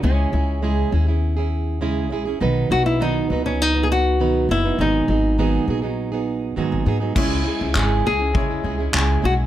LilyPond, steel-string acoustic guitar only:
\new Staff \with { instrumentName = "Steel-string acoustic guitar" } { \time 4/4 \key cis \dorian \tempo 4 = 101 <cis gis cis' e' gis'>8 <gis cis' e' gis'>8 <cis gis cis' e' gis'>8 <gis cis' e' gis'>16 <cis' e' gis'>8 <cis' e' gis'>8. <cis gis cis' e' gis'>8 <gis cis' e' gis'>16 <cis' e' gis'>16 | <b, dis fis b dis' b'>8 <fis b dis' b'>8 <b, dis fis b dis' b'>8 <fis b dis' b'>16 <fis b dis' b'>8 <fis b dis' b'>8. <b, dis fis b dis' b'>8 <fis b dis' b'>16 <fis b dis' b'>16 | <gis, dis fis b dis' gis'>8 <fis b dis' gis'>8 <gis, dis fis b dis' gis'>8 <fis b dis' gis'>16 <fis b dis' gis'>8 <fis b dis' gis'>8. <gis, dis fis b dis' gis'>8 <fis b dis' gis'>16 <fis b dis' gis'>16 | <cis gis cis' e' gis'>8 <gis cis' e' gis'>16 <cis' e' gis'>16 <cis gis cis' e' gis'>8. <cis' e' gis'>16 <gis cis' e' gis'>16 <cis' e' gis'>16 <gis cis' e' gis'>16 <cis' e' gis'>16 <cis gis cis' e' gis'>8 <gis cis' e' gis'>8 | }